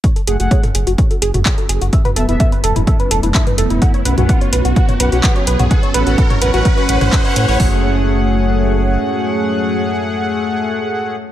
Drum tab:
HH |xxxxxxxxxxxxxxxx|xxxxxxxxxxxxxxxx|xxxxxxxxxxxxxxxx|xxxxxxxxxxxxxxxx|
CP |------------x---|------------x---|------------x---|------------x---|
T2 |-----o-----o----|-o-----o-----o--|---o-----o-----o|-----o-----o----|
BD |o---o---o---o---|o---o---o---o---|o---o---o---o---|o---o---o---o---|

HH |o---------------|----------------|
CP |----------------|----------------|
T2 |----------------|----------------|
BD |o---------------|----------------|